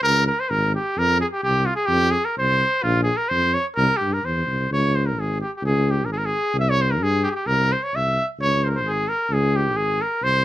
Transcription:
0.03 C#2 A#4
0.27 A#4
0.40 C5
0.49 G#1 A#4
0.75 G4
0.96 F2 A#4
1.21 G#4
1.33 G4
1.43 C2 G4
1.66 F4
1.76 G#4
1.86 F2 G4
2.11 G#4
2.25 A#4
2.38 C2 C5
2.83 A#1 F4
3.03 G#4
3.17 A#4
3.29 F2 C5
3.54 C#5
3.76 C2 A#4
3.97 G4
4.01 G2
4.13 A#4
4.24 E2 C5
4.46 C2
4.71 C#2 C#5
4.95 C5
5.06 A#4
5.16 G#1 G#4
5.41 G4
5.57 G4
5.63 C#2 G#4
5.91 G4
6.05 G#1 A#4
6.13 G#4
6.18 A#4
6.26 G#4
6.54 C2
6.60 E5
6.70 C#5
6.81 C5
6.91 A#4
7.00 G2 G#4
7.24 G4 G#4
7.31 G4
7.47 C2 A#4
7.72 C5
7.83 C#5
7.94 C2 E5
8.39 C#2 C#5
8.64 A#4 C5
8.76 C5
8.83 G#1
8.88 G#4
9.08 A#4
9.30 C#2 G#4
9.56 G4
9.75 G#1 G#4
10.02 A#4
10.22 C2 C5

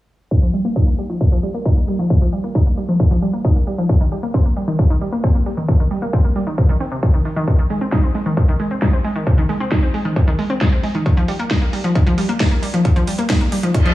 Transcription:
0.31 D#3, kick
0.42 F3
0.54 G3, open hi-hat
0.65 A#3
0.76 D#4, kick
0.87 A#3
0.98 G3, open hi-hat
1.10 F3
1.21 D#3, kick
1.32 F3
1.43 G3, open hi-hat
1.54 A#3
1.65 D#4, kick
1.77 A#3
1.88 G3, open hi-hat
1.99 F3, closed hi-hat
2.10 D#3, kick
2.21 F3
2.33 G3, open hi-hat
2.44 A#3
2.55 D#4, kick
2.66 A#3
2.77 G3, open hi-hat
2.89 F3, closed hi-hat
3.00 D#3, kick
3.11 F3
3.22 G3, open hi-hat
3.33 A#3
3.45 D#4, kick
3.56 A#3, closed hi-hat
3.67 G3, open hi-hat
3.78 F3
3.89 C3, kick
4.01 D#3
4.12 G3, open hi-hat
4.23 A#3
4.34 C4, kick
4.45 A#3
4.57 G3, open hi-hat
4.68 D#3, closed hi-hat
4.79 C3, kick
4.90 D#3
5.01 G3, open hi-hat
5.12 A#3, closed hi-hat
5.24 C4, kick, closed hi-hat
5.35 A#3, closed hi-hat
5.46 G3, open hi-hat
5.57 D#3, closed hi-hat
5.68 C3, kick, closed hi-hat
5.80 D#3, closed hi-hat
5.91 G3, open hi-hat
6.02 A#3, closed hi-hat
6.13 C4, kick, closed hi-hat
6.24 A#3, closed hi-hat
6.36 G3, open hi-hat
6.47 D#3, closed hi-hat
6.58 C3, kick, closed hi-hat
6.69 D#3
6.80 C4, open hi-hat
6.92 C3, closed hi-hat
7.03 C3, kick, closed hi-hat
7.14 D#3, closed hi-hat
7.25 D#3, open hi-hat
7.36 D#3, closed hi-hat
7.48 C3, kick, closed hi-hat
7.59 D#3, closed hi-hat
7.70 G#3, open hi-hat
7.81 C4, closed hi-hat
7.92 D#4, kick, snare, closed hi-hat
8.04 C4, closed hi-hat
8.15 G#3, open hi-hat
8.26 D#3, closed hi-hat
8.37 C3, kick, closed hi-hat
8.48 D#3, closed hi-hat
8.59 G#3, open hi-hat
8.71 C4, closed hi-hat
8.82 D#4, kick, snare, closed hi-hat
8.93 C4, closed hi-hat
9.04 G#3, open hi-hat
9.16 D#3, closed hi-hat
9.27 C3, kick, closed hi-hat
9.38 D#3, closed hi-hat
9.49 G#3, open hi-hat
9.60 C4, closed hi-hat
9.71 D#4, kick, snare, closed hi-hat
9.83 C4, closed hi-hat
9.94 G#3, open hi-hat
10.05 D#3, closed hi-hat
10.16 C3, kick, closed hi-hat
10.27 D#3, closed hi-hat
10.39 G#3, open hi-hat
10.50 C4, closed hi-hat
10.61 D#4, kick, snare, closed hi-hat
10.72 C4, closed hi-hat
10.83 G#3, open hi-hat
10.95 D#3, closed hi-hat
11.06 D#3, kick, closed hi-hat
11.17 F3, closed hi-hat
11.28 G3, open hi-hat
11.39 A#3, closed hi-hat
11.51 D#4, kick, snare, closed hi-hat
11.62 A#3, closed hi-hat
11.73 G3, open hi-hat
11.84 F3, closed hi-hat
11.95 D#3, kick, closed hi-hat
12.07 F3, closed hi-hat
12.18 G3, open hi-hat
12.29 A#3, closed hi-hat
12.40 D#4, kick, snare, closed hi-hat
12.51 A#3, closed hi-hat
12.62 G3, open hi-hat
12.74 F3, closed hi-hat
12.85 D#3, kick, closed hi-hat
12.96 F3, closed hi-hat
13.07 G3, open hi-hat
13.18 A#3, closed hi-hat
13.30 D#4, kick, snare, closed hi-hat
13.41 A#3, closed hi-hat
13.52 G3, open hi-hat
13.63 F3, closed hi-hat
13.74 D#3, kick, closed hi-hat, reverse cymbal
13.86 F3, closed hi-hat

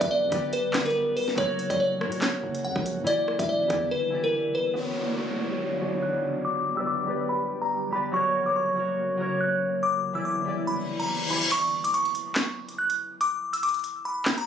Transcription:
Already playing: D3 G3 B3 D4 G4 B4 D5
0.01 G1 E5, kick, closed hi-hat
0.11 D5
0.22 G2
0.30 G1 G3 G4 B4, kick, closed hi-hat
0.34 D5
0.53 B4, closed hi-hat
0.72 G1 G3 B3 G4, snare, clap, closed hi-hat
0.76 D5, closed hi-hat
0.86 A#4, closed hi-hat
0.91 closed hi-hat
1.17 B4, open hi-hat
1.28 snare
1.35 F#1 C#3 F#3 A#3 F#4 A#4 C#5, kick, closed hi-hat
1.40 C#5
1.59 closed hi-hat
1.70 F#1 D5, kick, closed hi-hat
1.80 C#5
1.99 A#2 F#3 F#4 A#4, cross-stick
2.03 C#5
2.12 closed hi-hat
2.21 snare, clap, closed hi-hat
2.43 F#1
2.55 closed hi-hat
2.65 F#2 F#5
2.76 A#1, kick
2.86 closed hi-hat
2.97 A#2
3.04 D3 E3 G3 B3 E4 G4 D5, closed hi-hat
3.09 D5
3.28 cross-stick
3.39 E1 E5, kick, closed hi-hat
3.49 D5
3.60 B1
3.68 E2 E3 E4 G4, kick, closed hi-hat
3.72 D5
3.91 B4
4.10 E3 E4 G4
4.15 D5
4.24 A#4
4.55 B4
4.73 D3 F#3 B3 D4 F#4 C#5 C#6, downlifter
4.78 D5
5.05 B3 F#4 C#5 D6
5.10 D5
5.18 C#6
5.37 B3 F#4 C#5
5.41 D5
5.79 B3 F#4 C#5
5.84 D5
6.02 F#6
6.45 D3 G3 G4 D6
6.75 G3 G4 B4 E6
6.80 D5
6.87 D6
7.06 G3 G4 B4
7.10 D5
7.29 B5
7.62 A#5
7.91 G3 G4 B4 B5
7.95 D5
8.11 C#3 F#3 A#3 F#4 A#4 C#6
8.16 C#5
8.44 F#3 F#4 A#4 D6
8.48 C#5
8.56 C#6
8.75 F#3 F#4 A#4
8.79 C#5
9.17 F#3 F#4 A#4
9.22 C#5
9.41 F#6
9.83 D3 G3 B3 E4 D6
10.13 E3 E4 G4 E6
10.18 D5
10.25 D6
10.44 E3 E4 G4
10.49 D5
10.67 B5, reverse cymbal
11.00 A#5
11.28 E3 E4 G4 B5
11.33 D5
11.52 C#6, closed hi-hat, crash
11.84 D6, closed hi-hat
11.94 C#6, closed hi-hat
12.05 closed hi-hat
12.15 closed hi-hat
12.36 snare, clap, closed hi-hat
12.69 closed hi-hat
12.78 F#6
12.90 closed hi-hat
13.21 D6, closed hi-hat
13.53 E6, closed hi-hat
13.63 D6, closed hi-hat
13.69 closed hi-hat
13.74 closed hi-hat
13.79 closed hi-hat
13.84 closed hi-hat
14.05 B5
14.26 snare, clap, closed hi-hat
14.38 A#5, closed hi-hat

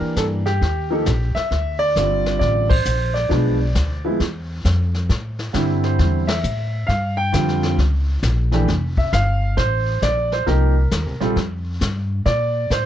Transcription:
Already playing: E3 A#3 D4 G4 A#4
0.01 muted upright bass stroke
0.16 G2 A4, kick, snare, hi-hat pedal
0.46 G4, snare
0.61 D#2, brush sweep, kick, snare
0.90 F3 A#3 D#4 A4
1.06 A#1, kick, snare, hi-hat pedal
1.35 E5, muted upright bass stroke, snare
1.51 D2, brush sweep, kick, snare
1.79 D5
1.96 G1 D3 G3 C4 F4, kick, snare, hi-hat pedal
2.26 snare
2.39 A1 D5, brush sweep, kick, snare
2.69 C5, kick, ride
2.85 A#1, hi-hat pedal
3.14 D5, snare
3.29 B1 F3 G#3 B3 D4, brush sweep, kick, snare
3.75 D2, kick, snare, hi-hat pedal
4.05 F3 G#3 B3 E4
4.20 E2, brush sweep, kick, snare
4.65 F2, kick, snare, hi-hat pedal
4.94 snare
5.09 A2, brush sweep, kick, snare
5.39 snare
5.53 G2 D3 G3 C4 E4, kick, snare, hi-hat pedal
5.84 C5, snare
5.99 E2, brush sweep, kick, snare
6.27 E5, snare, ride
6.44 A2, hi-hat pedal
6.87 G2 F5, brush sweep, kick, snare
7.17 G5
7.32 F2 D3 G3 C4 F4, kick, snare, hi-hat pedal
7.49 snare
7.63 snare
7.78 C#2, brush sweep, kick, snare
8.23 A#1, kick, snare, hi-hat pedal
8.52 E3 A3 D4 G4, snare
8.68 F1, brush sweep, kick, snare
8.97 E5, kick
9.13 G1 F5, kick, snare, hi-hat pedal
9.57 A1 C5, brush sweep, kick, snare
10.02 A#1 D5, kick, snare, hi-hat pedal
10.32 C5, snare
10.46 C2 F3 A#3 D#4 G4 A#4, brush sweep, kick, snare
10.91 D#2, kick, snare, hi-hat pedal
11.06 C2
11.20 A#1 G3 C4 F4 A4, snare
11.36 F2, brush sweep, kick, snare
11.81 G2, kick, snare, hi-hat pedal
12.26 A#2 D5, brush sweep, kick, snare
12.70 A2 C5, kick, snare, hi-hat pedal

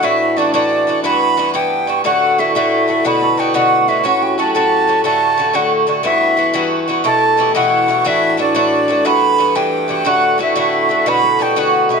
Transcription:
Already playing: A3 B3 D4 F#4 A4
0.03 A2 E3 D4 E4 F#4 E5
0.37 A2 E3 D4 F#4 D5
0.53 A2 E3 D4 F#4 D5
0.87 A2 E3 D4 F#4
1.03 G2 E3 B3 F#4 B4 B5
1.37 G2 E3 B3 F#4
1.54 G2 E3 B3 G4 G5
1.87 G2 E3 B3 F#4
2.04 A2 D3 A3 F#4 F#5
2.38 A2 D3 A3 E4 F#4 E5
2.55 A2 D3 A3 E4 F#4 E5
2.88 A2 D3 A3 F#4 A4
3.05 B2 D3 B3 F#4 B4 B5
3.22 A4
3.37 B2 D3 B3 F#4 G5
3.54 B2 D3 B3 F#4 F#5
3.66 F#4
3.77 F#4
3.88 B2 D3 B3 E4 F#4 E5
4.04 A2 F#3 C#4 F#4 F#5
4.22 G4 G5
4.38 A2 F#3 C#4 F#4 A4 A5
4.54 A2 F#3 C#4 F#4 A4 A5
4.88 A2 F#3 C#4 F#4
5.04 A2 D3 A3 F#4 A4 A5
5.38 A2 D3 A3 F#4
5.53 A2 D3 A3 F#4 F#5
5.87 A2 D3 A3 F#4
6.03 G2 E3 B3 E4 F#4 E5
6.37 G2 E3 B3 F#4
6.54 G2 E3 B3 F#4
6.88 G2 E3 B3 F#4
7.04 B2 E3 A3 E4 A4 A5
7.37 B2 E3 A3 E4 G4
7.55 B2 E3 A3 E4 F#4 F#5
7.88 B2 E3 A3 E4
8.04 A2 E3 D4 E4 F#4 E5
8.37 A2 E3 D4 F#4 D5
8.55 A2 E3 D4 F#4 D5
8.88 A2 E3 D4 F#4 A4
9.05 G2 E3 B3 F#4 B4 B5
9.38 G2 E3 B3 F#4
9.55 G2 E3 B3 G4 G5
9.88 G2 E3 B3 F#4 G4
10.05 A2 D3 A3 F#4 F#5
10.38 A2 D3 A3 E4 F#4
10.42 E5
10.55 A2 D3 A3 E4 F#4 E5
10.89 A2 D3 A3 F#4
11.06 B2 D3 B3 F#4 B4 B5
11.23 A4
11.39 B2 D3 B3 F#4 G4 G5
11.56 B2 D3 B3 F#4 F#5
11.89 B2 D3 B3 E4 F#4 E5

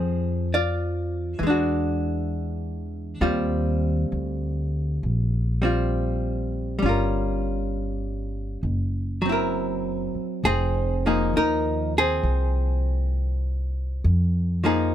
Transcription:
Already playing: F2 F3 C4 G#4
0.54 F4 D5
1.39 E2 E3
1.43 G#3 D4
1.50 F#4
3.21 D#2 G3 C4 F4
4.12 D2
5.03 A#1
5.62 G3 C4 F4
6.79 G1 G3 C#4
6.86 F4 A#4
8.63 F#1
9.22 F#3 C4
9.29 E4 A#4
10.14 muted upright bass stroke
10.44 F1 C4 G#4
11.06 F3 A#3 D#4 G#4
11.33 D#2 D#4 A#4
11.98 C4 G#4
12.23 C2
14.04 F2
14.64 F3 A#3 D#4 G#4

